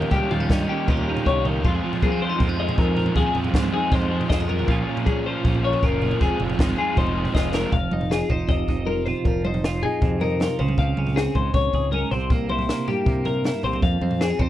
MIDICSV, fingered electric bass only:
0, 0, Header, 1, 2, 480
1, 0, Start_track
1, 0, Key_signature, -4, "minor"
1, 0, Tempo, 380711
1, 146, Time_signature, 4, 2, 24, 8
1, 18271, End_track
2, 0, Start_track
2, 0, Title_t, "Fingered electric bass"
2, 0, Program_c, 0, 33
2, 145, Note_on_c, 0, 37, 96
2, 238, Note_off_c, 0, 37, 0
2, 391, Note_on_c, 0, 39, 86
2, 574, Note_off_c, 0, 39, 0
2, 631, Note_on_c, 0, 43, 78
2, 814, Note_off_c, 0, 43, 0
2, 1112, Note_on_c, 0, 39, 87
2, 1479, Note_off_c, 0, 39, 0
2, 1595, Note_on_c, 0, 36, 77
2, 2073, Note_off_c, 0, 36, 0
2, 2073, Note_on_c, 0, 41, 83
2, 2255, Note_off_c, 0, 41, 0
2, 2553, Note_on_c, 0, 53, 73
2, 2920, Note_off_c, 0, 53, 0
2, 3032, Note_on_c, 0, 41, 86
2, 3398, Note_off_c, 0, 41, 0
2, 3504, Note_on_c, 0, 41, 90
2, 3873, Note_off_c, 0, 41, 0
2, 3985, Note_on_c, 0, 39, 98
2, 4078, Note_off_c, 0, 39, 0
2, 4229, Note_on_c, 0, 41, 86
2, 4413, Note_off_c, 0, 41, 0
2, 4462, Note_on_c, 0, 44, 78
2, 4648, Note_off_c, 0, 44, 0
2, 4938, Note_on_c, 0, 41, 88
2, 5310, Note_off_c, 0, 41, 0
2, 5419, Note_on_c, 0, 41, 81
2, 5898, Note_off_c, 0, 41, 0
2, 5898, Note_on_c, 0, 34, 88
2, 6085, Note_off_c, 0, 34, 0
2, 6385, Note_on_c, 0, 46, 83
2, 6753, Note_off_c, 0, 46, 0
2, 6867, Note_on_c, 0, 34, 84
2, 7235, Note_off_c, 0, 34, 0
2, 7350, Note_on_c, 0, 30, 93
2, 7716, Note_off_c, 0, 30, 0
2, 7830, Note_on_c, 0, 29, 93
2, 7920, Note_off_c, 0, 29, 0
2, 8073, Note_on_c, 0, 29, 85
2, 8254, Note_off_c, 0, 29, 0
2, 8314, Note_on_c, 0, 32, 76
2, 8495, Note_off_c, 0, 32, 0
2, 8785, Note_on_c, 0, 29, 88
2, 9154, Note_off_c, 0, 29, 0
2, 9260, Note_on_c, 0, 29, 83
2, 9631, Note_off_c, 0, 29, 0
2, 9741, Note_on_c, 0, 29, 79
2, 9928, Note_off_c, 0, 29, 0
2, 9983, Note_on_c, 0, 29, 77
2, 10354, Note_off_c, 0, 29, 0
2, 10460, Note_on_c, 0, 29, 71
2, 10648, Note_off_c, 0, 29, 0
2, 10702, Note_on_c, 0, 29, 76
2, 10889, Note_off_c, 0, 29, 0
2, 10942, Note_on_c, 0, 29, 70
2, 11499, Note_off_c, 0, 29, 0
2, 11663, Note_on_c, 0, 29, 87
2, 12405, Note_off_c, 0, 29, 0
2, 12632, Note_on_c, 0, 41, 87
2, 13186, Note_off_c, 0, 41, 0
2, 13362, Note_on_c, 0, 37, 80
2, 13544, Note_off_c, 0, 37, 0
2, 13589, Note_on_c, 0, 37, 90
2, 13776, Note_off_c, 0, 37, 0
2, 13837, Note_on_c, 0, 37, 81
2, 14205, Note_off_c, 0, 37, 0
2, 14310, Note_on_c, 0, 37, 73
2, 14497, Note_off_c, 0, 37, 0
2, 14548, Note_on_c, 0, 37, 78
2, 14736, Note_off_c, 0, 37, 0
2, 14792, Note_on_c, 0, 37, 75
2, 15162, Note_off_c, 0, 37, 0
2, 15273, Note_on_c, 0, 36, 85
2, 16011, Note_off_c, 0, 36, 0
2, 16471, Note_on_c, 0, 48, 88
2, 17024, Note_off_c, 0, 48, 0
2, 17195, Note_on_c, 0, 36, 75
2, 17378, Note_off_c, 0, 36, 0
2, 17431, Note_on_c, 0, 41, 84
2, 17616, Note_off_c, 0, 41, 0
2, 17670, Note_on_c, 0, 41, 83
2, 18038, Note_off_c, 0, 41, 0
2, 18149, Note_on_c, 0, 41, 73
2, 18271, Note_off_c, 0, 41, 0
2, 18271, End_track
0, 0, End_of_file